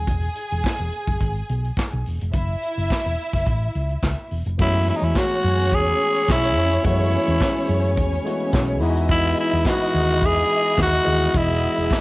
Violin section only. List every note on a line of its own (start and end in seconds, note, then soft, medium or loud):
0.00 2.01 G#4 medium
0.00 2.01 G#5 medium
2.33 4.27 E4 loud
2.33 4.27 E5 loud
4.60 8.78 C#4 loud
4.60 8.78 C#5 loud
8.81 12.01 E4 medium
8.81 12.01 D#5 medium